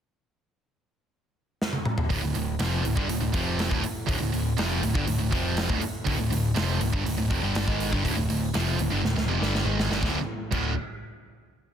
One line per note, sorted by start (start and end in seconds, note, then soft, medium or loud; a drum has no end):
1.62 snare medium
1.73 high tom medium
1.85 mid tom medium
1.98 floor tom loud
2.10 2.22 D1 medium
2.10 2.21 D2 loud
2.10 2.22 A2 loud
2.10 kick loud
2.10 open hi-hat medium
2.23 2.34 D1 medium
2.23 2.35 D2 medium
2.23 2.35 A2 medium
2.35 2.58 D1 medium
2.35 2.55 D2 medium
2.35 2.55 A2 medium
2.35 open hi-hat medium
2.59 2.83 F1 medium
2.59 2.83 F2 loud
2.59 2.84 C3 medium
2.59 2.84 F3 loud
2.59 snare loud
2.59 open hi-hat medium
2.85 2.96 D1 medium
2.85 2.96 D2 medium
2.85 2.97 A2 medium
2.85 open hi-hat medium
2.97 3.08 G1 medium
2.97 3.08 G2 medium
2.97 3.09 D3 medium
2.97 kick loud
3.09 3.21 D1 medium
3.09 3.20 D2 medium
3.09 3.21 A2 medium
3.09 open hi-hat medium
3.21 3.33 D1 medium
3.21 3.34 D2 medium
3.21 3.34 A2 medium
3.34 3.69 F1 medium
3.34 3.70 F2 medium
3.34 3.71 C3 medium
3.34 3.71 F3 loud
3.34 kick loud
3.34 open hi-hat medium
3.59 snare loud
3.59 open hi-hat medium
3.71 3.83 D1 loud
3.71 3.82 D2 medium
3.71 3.83 A2 loud
3.71 kick loud
3.83 muted distorted electric guitar stroke medium
3.83 muted picked electric bass stroke soft
3.83 open hi-hat medium
4.07 4.20 D1 loud
4.07 4.19 D2 loud
4.07 4.19 A2 loud
4.07 kick loud
4.07 open hi-hat medium
4.20 4.33 D1 medium
4.20 4.32 D2 medium
4.20 4.32 A2 medium
4.33 4.56 D1 medium
4.33 4.53 D2 medium
4.33 4.53 A2 medium
4.33 open hi-hat medium
4.58 4.81 F1 medium
4.58 4.82 F2 medium
4.58 4.82 C3 medium
4.58 4.82 F3 loud
4.58 snare loud
4.58 open hi-hat medium
4.83 4.94 D1 medium
4.83 4.94 D2 medium
4.83 4.95 A2 medium
4.83 open hi-hat medium
4.95 5.07 G1 medium
4.95 5.06 G2 medium
4.95 5.07 D3 loud
4.95 kick loud
5.07 5.19 D1 medium
5.07 5.18 D2 medium
5.07 5.18 A2 medium
5.07 open hi-hat medium
5.19 5.31 D1 medium
5.19 5.31 D2 medium
5.19 5.32 A2 medium
5.31 5.67 F1 medium
5.31 5.68 F2 medium
5.31 5.69 C3 medium
5.31 5.69 F3 medium
5.31 kick loud
5.31 open hi-hat medium
5.57 snare loud
5.57 open hi-hat medium
5.69 5.81 D1 loud
5.69 5.80 D2 medium
5.69 5.81 A2 loud
5.69 kick loud
5.81 muted picked electric bass stroke soft
5.81 muted distorted electric guitar stroke medium
5.81 open hi-hat medium
6.06 6.18 D1 loud
6.06 6.18 D2 loud
6.06 6.18 A2 loud
6.06 kick loud
6.06 open hi-hat medium
6.19 6.31 D1 medium
6.19 6.29 D2 medium
6.19 6.30 A2 medium
6.30 6.55 D1 medium
6.30 6.51 D2 medium
6.30 6.51 A2 medium
6.30 open hi-hat medium
6.55 6.79 F1 medium
6.55 6.80 F2 loud
6.55 6.80 C3 loud
6.55 6.81 F3 loud
6.55 snare loud
6.55 open hi-hat medium
6.80 6.93 D1 medium
6.80 6.92 D2 medium
6.80 6.93 A2 medium
6.80 open hi-hat medium
6.93 7.05 G1 medium
6.93 7.04 G2 loud
6.93 7.05 D3 loud
6.93 kick loud
7.05 7.17 D1 medium
7.05 7.16 D2 medium
7.05 7.16 A2 medium
7.05 open hi-hat medium
7.17 7.29 D1 medium
7.17 7.29 D2 medium
7.17 7.30 A2 medium
7.29 7.42 F1 medium
7.29 7.41 F2 loud
7.29 7.42 C3 loud
7.29 kick loud
7.29 open hi-hat medium
7.42 7.66 G1 loud
7.42 7.66 G2 medium
7.42 7.66 D3 loud
7.42 7.67 G3 loud
7.55 snare loud
7.55 open hi-hat medium
7.66 7.91 G#1 loud
7.66 7.90 G#2 medium
7.66 7.91 D#3 medium
7.66 7.91 G#3 medium
7.66 kick loud
7.80 open hi-hat medium
7.91 8.04 G1 loud
7.91 8.03 G2 loud
7.91 8.04 D3 loud
7.91 kick loud
8.03 8.16 D1 medium
8.03 8.15 D2 medium
8.03 8.15 A2 loud
8.03 kick medium
8.03 open hi-hat medium
8.16 8.28 D1 medium
8.16 8.27 D2 medium
8.16 8.28 A2 medium
8.28 8.53 D1 medium
8.28 8.49 D2 medium
8.28 8.49 A2 medium
8.28 open hi-hat medium
8.54 8.78 F1 medium
8.54 8.78 F2 medium
8.54 8.78 C3 loud
8.54 8.78 F3 loud
8.54 snare loud
8.54 open hi-hat medium
8.78 8.91 D1 medium
8.78 8.90 D2 medium
8.78 8.91 A2 medium
8.78 open hi-hat medium
8.91 9.03 G1 medium
8.91 9.02 G2 medium
8.91 9.03 D3 medium
9.04 9.15 D1 medium
9.04 9.15 D2 medium
9.04 9.15 A2 medium
9.04 snare medium
9.16 9.27 D1 medium
9.16 9.28 D2 medium
9.16 9.28 A2 medium
9.16 snare medium
9.28 9.40 F1 medium
9.28 9.39 F2 medium
9.28 9.40 C3 loud
9.40 9.64 G1 loud
9.40 9.64 G2 medium
9.40 9.64 D3 medium
9.40 9.65 G3 medium
9.40 snare medium
9.55 snare medium
9.65 9.88 G#1 loud
9.65 9.89 G#2 medium
9.65 9.90 D#3 medium
9.65 9.90 G#3 medium
9.80 snare medium
9.90 10.02 G1 loud
9.90 10.02 G2 medium
9.90 10.02 D3 loud
9.90 snare medium
10.02 10.16 D1 medium
10.02 10.17 D2 medium
10.02 10.18 A2 loud
10.02 10.18 D3 loud
10.02 kick loud
10.02 snare medium
10.51 10.75 D1 medium
10.51 10.71 D2 loud
10.51 10.72 A2 loud
10.51 10.72 D3 loud
10.51 kick loud
10.51 crash medium